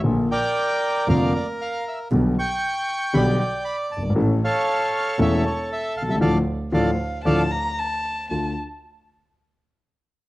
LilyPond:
<<
  \new Staff \with { instrumentName = "Violin" } { \time 4/4 \key d \minor \tempo 4 = 117 r1 | r1 | r1 | r4 f''4 a''8 bes''8 a''4 |
a''8 r2. r8 | }
  \new Staff \with { instrumentName = "Bandoneon" } { \time 4/4 \key d \minor << { r8 g''4. f''8 d''8 f''8 e''8 | r8 cis'''4. b''8 g''8 b''8 a''8 | r8 f''4. e''8 cis''8 e''8 f''16 e''16 | <a' d'' f''>8 r8 <a' d'' f''>8 r8 <a' d'' f''>8 r4. |
r1 | } \\ { r8 <bes' d''>4. <bes' d''>2 | r8 g''4. <d'' g''>2 | r8 <a' cis''>4. <a' cis''>2 | r1 |
r1 | } >> }
  \new Staff \with { instrumentName = "Grand piano" } { \clef bass \time 4/4 \key d \minor <bes,, bes, d f bes f'>8 r4. <f,, f, d f bes f'>8 r4. | <b,, b, d g b g'>8 r4. <b,, b, d g b g'>8 r4 r32 fis,,32 g,,32 gis,,32 | <a,, a, e a cis' a'>8 r4. <e,, e, e a cis' a'>8 r4 r32 b,,32 c,32 cis,32 | <a, d f>8 r8 <a, d f>8 r8 <a, d f>8 r4. |
<d, a d' f'>8 r2. r8 | }
  \new Staff \with { instrumentName = "Double bass" } { \clef bass \time 4/4 \key d \minor bes,,8 r4. f,,8 r4. | b,,8 r4. b,,8 r4 g,,8 | a,,8 r4. e,,8 r4 c,8 | d,8 r8 d,8 r8 d,8 r4. |
d,8 r2. r8 | }
>>